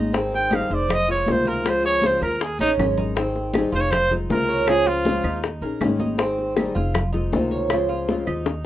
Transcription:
Already playing: G#1 D#3 G#3 C#4 D#4 G#4
0.13 D#3 C4 D#4 G#4, high bongo, high conga
0.33 G5, high bongo, high conga
0.51 D#3 G3 C4 D#4 G#4, high bongo, high conga, claves
0.55 F5
0.70 F1 C4 D#4 G#4 C5, high conga
0.74 D5
0.89 D#5, muted nylon-string guitar stroke, high bongo, high conga, low conga, claves
1.08 G#3 C4 F4 C#5, high bongo, high conga
1.26 C#2 C3 D#3 G#3 C4 F4, high bongo, low bongo, high conga
1.31 C5
1.45 F4 A#4, high bongo, high conga
1.64 C#3 F3 G#3 C4 F4, high bongo, high conga, claves
1.69 C5
1.82 G#4 C#5, high bongo, high conga
2.02 C#3 F3 G#3 C4 F4, high bongo, high conga
2.06 C5
2.21 D#2 G#3 C4 F4 A#4, high conga, claves
2.40 G#4, muted nylon-string guitar stroke, high bongo, high conga
2.59 A#1 C#4 D#4 G#4, high bongo, high conga
2.63 C#4
2.78 G#1 D#3 G#3 C#4 D#4 G#4, high bongo, low bongo, low conga, claves
2.98 D#4, high bongo, low conga
3.16 D#3 C4 D#4 G#4, high bongo, high conga
3.35 high bongo, high conga
3.54 D#3 G3 C4 D#4, high bongo, high conga, claves
3.58 G#4
3.72 F1 C4 D#4 F4 G#4 C5, high conga
3.80 C#5
3.91 C5, muted nylon-string guitar stroke, high bongo, high conga, low conga, claves
4.11 G#3 C4 D#4 F4, high bongo, high conga, low conga
4.30 C#2 C3 D#3 G#3 C4 F4 A#4, high bongo, low bongo, high conga
4.49 C#5, high bongo
4.67 C#3 F3 G#3 C4 F4 G#4, high bongo, high conga, claves
4.87 F4, high bongo, high conga
5.05 C#3 F3 G#3 C4 F4, high bongo, high conga
5.24 D#2 G#3 C4 D#4 F4, high conga, claves
5.43 muted nylon-string guitar stroke, high bongo, high conga
5.61 A#1 C#4 D#4 G#4 A#4, high bongo, high conga
5.81 G#1 D#3 G#3 C#4 D#4 G#4, high bongo, low bongo, high conga, claves
6.00 D#4, high bongo, high conga
6.18 D#3 C4 D#4 G#4, high bongo, high conga
6.38 high bongo, high conga
6.57 D#3 G3 C4 D#4 G#4, high bongo, high conga, claves
6.75 F1 C4 D#4 F4 G#4, high conga
6.94 muted nylon-string guitar stroke, high bongo, high conga, low conga, claves
7.13 G#3 C4 D#4 F4, high bongo, high conga, low conga
7.33 C#2 C3 D#3 G#3 C4 F4, high bongo, low bongo, high conga
7.51 C#5, high bongo
7.70 C#3 F3 G#3 C4 F4, high bongo, high conga, claves
7.89 F4, high bongo, high conga
8.09 C#3 F3 G#3 C4 F4, high bongo, high conga
8.27 D#2 G#3 C4 D#4 F4, high conga, claves
8.46 muted nylon-string guitar stroke, high bongo, high conga

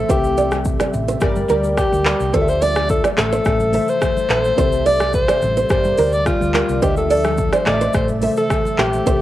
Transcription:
Already playing: C3 A3 A4 C5 E5
0.08 C2 G3 C4 G4 A4 C5 E5, kick, low conga, shaker
0.24 shaker
0.37 D5, high conga, shaker
0.51 cross-stick, high conga, shaker
0.65 kick, shaker
0.80 D5, cross-stick, high conga, shaker
0.93 A1, low conga, shaker
1.08 C5, shaker
1.20 G1 D3 G3 A#3 G4 A#4 D5, kick, cross-stick, low conga, shaker
1.36 high conga, shaker
1.48 D2 G3 G4 A#4 D5, high conga, shaker
1.64 shaker
1.77 G4, kick, cross-stick, low conga, shaker
1.92 D2, high conga, shaker
2.04 G3 G4 A4 A#4 D5, clap, high conga, shaker
2.20 C2, shaker
2.32 D2 D3 F3 A3 D4 F4 A4 C5 D5 E5, kick, low conga, shaker
2.42 E5
2.48 C5, shaker
2.62 D5, open hi-hat, high conga, shaker
2.76 cross-stick, high conga, shaker
2.89 A4, kick, shaker
3.04 D5, cross-stick, high conga, shaker
3.17 A1 C3 E3 A3 A4 C5 E5, cross-stick, clap, low conga, shaker
3.32 C5, shaker
3.45 A1, kick, cross-stick, low conga, shaker
3.60 high conga, shaker
3.73 A3 A4 C5 E5, open hi-hat, high conga, shaker
3.88 C5, shaker
4.02 kick, cross-stick, low conga, shaker
4.17 high conga, shaker
4.29 A#1 A3 A4 C5 E5, clap, high conga, shaker
4.44 shaker
4.57 C2 G3 C4 G4 A4 C5 E5, kick, low conga, shaker
4.72 shaker
4.86 D5, open hi-hat, high conga, shaker
5.00 cross-stick, high conga, shaker
5.13 C5, kick, shaker
5.28 D5, cross-stick, high conga, shaker
5.42 A1, low conga, shaker
5.57 C5, shaker
5.69 G1 D3 G3 A#3 G4 A#4 C5 D5, kick, cross-stick, low conga, shaker
5.84 high conga, shaker
5.97 D2 G3 G4 A#4 D5, open hi-hat, high conga, shaker
6.12 D5, shaker
6.26 F4, kick, cross-stick, low conga, shaker
6.41 D2, high conga, shaker
6.53 G3 G4 A#4 D5, clap, high conga, shaker
6.69 C2, shaker
6.81 D2 D3 F3 A3 D4 F4 G4 C5 D#5 E5, kick, low conga, shaker
6.90 E5
6.97 A4, shaker
7.10 A4 D5, open hi-hat, high conga, shaker
7.24 cross-stick, high conga, shaker
7.38 kick, shaker
7.53 C5 D5, cross-stick, high conga, shaker
7.65 A1 C3 E3 A3 A4 C5 D5 D#5, cross-stick, clap, low conga, shaker
7.74 E5
7.81 C5, shaker
7.93 A1 C5, kick, cross-stick, low conga, shaker
8.08 high conga, shaker
8.21 A3 A4 C5 E5, open hi-hat, high conga, shaker
8.37 A4, shaker
8.50 kick, cross-stick, low conga, shaker
8.65 high conga, shaker
8.77 A#1 A3 G4 A4 C5 E5, clap, high conga, shaker
8.93 shaker
9.05 C2 G3 C4 G4 A4 C5 E5, kick, low conga, shaker

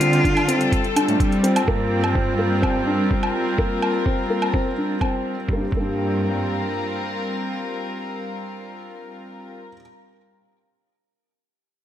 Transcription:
Already playing: D3 G3 F4 G4
0.01 C4, closed hi-hat
0.10 F4 A4, closed hi-hat
0.24 D4, kick, closed hi-hat
0.37 closed hi-hat, low woodblock
0.48 C4, closed hi-hat
0.61 closed hi-hat
0.72 kick, closed hi-hat
0.84 closed hi-hat
0.96 D4, closed hi-hat, low woodblock
1.08 A2, closed hi-hat
1.20 G3, kick, closed hi-hat
1.32 closed hi-hat
1.43 C4, closed hi-hat
1.56 closed hi-hat, low woodblock
1.68 G2 A#3, kick
2.04 low woodblock
2.15 C4, kick
2.30 A#4
2.39 A#3
2.62 C4, kick, low woodblock
2.87 D4
3.11 C4, kick
3.23 low woodblock
3.58 A#3, kick
3.82 low woodblock
4.06 C4, kick
4.30 A#3
4.42 low woodblock
4.54 C4, kick
4.78 D4
5.01 C4, kick, low woodblock
5.48 G2 G3, kick
5.53 A#3 C4
5.57 D4 G4
5.62 F4
5.70 G2 G3 A#4, kick
5.77 A#3 D4
5.85 G4

